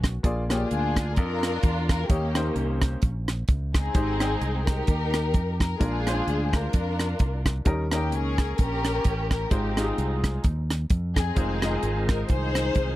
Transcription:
Already playing: B1
0.04 kick, cross-stick, closed hi-hat
0.23 A#1 A#2 A#3 F4 G#4 D5, kick, closed hi-hat
0.49 A#3 F4 G4 G#4 C#5, cross-stick, closed hi-hat
0.57 D5
0.70 D2 D4 F4 G#4, closed hi-hat
0.96 kick, cross-stick, closed hi-hat
1.16 F2 D4 F4 A#4, kick, closed hi-hat
1.43 cross-stick, closed hi-hat
1.63 E2, kick, closed hi-hat
1.89 A#4, kick, cross-stick, closed hi-hat
2.09 D#2 D#3 A#3 C#4 D#4 G4 C#5, kick, closed hi-hat
2.35 A#3 D#4 G4 C5, cross-stick, closed hi-hat
2.56 C2, closed hi-hat
2.82 kick, cross-stick, closed hi-hat
3.02 A#1, kick, closed hi-hat
3.28 cross-stick, closed hi-hat
3.48 C#2, kick, closed hi-hat
3.74 C4 D#4 G#4, kick, cross-stick, closed hi-hat
3.94 G#1 G#2 G#3 D#4 G4 C5, kick, closed hi-hat
4.20 G#3 D#4 C5 G5, cross-stick, closed hi-hat
4.41 C2, closed hi-hat
4.67 D#4 G4 A#4, kick, cross-stick, closed hi-hat
4.87 D#2, kick, closed hi-hat
5.14 cross-stick, closed hi-hat
5.34 F2, kick, closed hi-hat
5.60 A#4, kick, cross-stick, closed hi-hat
5.79 A#1 A#2 G#3 D4 F4 G#4 A#4, kick, closed hi-hat
6.06 G#3 C#4 F4 C5, cross-stick, closed hi-hat
6.12 D4
6.27 D2, closed hi-hat
6.53 D4 F4 A#4, kick, cross-stick, closed hi-hat
6.73 F2, kick, closed hi-hat
6.99 cross-stick, closed hi-hat
7.19 C2, kick, closed hi-hat
7.46 kick, cross-stick, closed hi-hat
7.65 D#2 D#3 G3 C#4 D#4 A#4, kick, closed hi-hat
7.91 A#3 C#4 D#4 G4 A#4, cross-stick, closed hi-hat
8.12 C#2 C#4 G#4, closed hi-hat
8.38 kick, cross-stick, closed hi-hat
8.58 A#1 C#4 G4 A#4, kick, closed hi-hat
8.85 cross-stick, closed hi-hat
9.04 A1, kick, closed hi-hat
9.31 A#4, kick, cross-stick, closed hi-hat
9.50 G#1 G#2 G#3 C4 D#4 F4 G4 C5, kick, closed hi-hat
9.77 G#3 D#4 F4 G4, cross-stick, closed hi-hat
9.84 G#4
9.98 C2, closed hi-hat
10.24 kick, cross-stick, closed hi-hat
10.44 D#2, kick, closed hi-hat
10.70 cross-stick, closed hi-hat
10.90 F2, kick, closed hi-hat
11.16 C4 D#4 G#4, kick, cross-stick, closed hi-hat
11.35 F1 D#3 G#3 C4 D#4 F4 C5, kick, closed hi-hat
11.62 G#3 D#4 F4 D#5, cross-stick, closed hi-hat
11.83 G#1, closed hi-hat
12.09 A#4, kick, cross-stick, closed hi-hat
12.29 C2 D#4 G#4 C5, kick, closed hi-hat
12.55 cross-stick, closed hi-hat
12.75 C2, kick, closed hi-hat

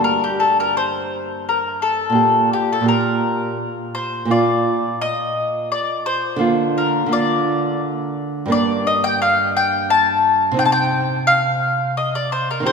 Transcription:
Already playing: G2 A#3
0.00 G4
0.04 A#4
0.24 G4
0.40 A4
0.60 A#4
0.77 C5
1.49 A#4
1.82 A4
2.10 A#2 A#3
2.15 G4
2.53 G4
2.73 A4
2.81 A#2 A#3
2.86 G4 A#4
3.95 C5
4.25 A#2 A#3
4.31 F4 D5
5.01 D#5
5.72 D5
6.06 C5
6.36 D3 A#3
6.41 F4
6.78 A#4
7.06 D3 A#3
7.11 F4 D5
8.46 G2 A#3
8.50 D4 D5
8.87 D#5
9.04 G5
9.22 F5
9.57 G5
9.90 A5
10.51 C3 C4
10.57 D#4 G5
10.65 A5
10.72 G5
11.27 F5
11.97 D#5
12.15 D5
12.32 C5
12.51 A#4
12.60 D#3 C4
12.66 G4 C5

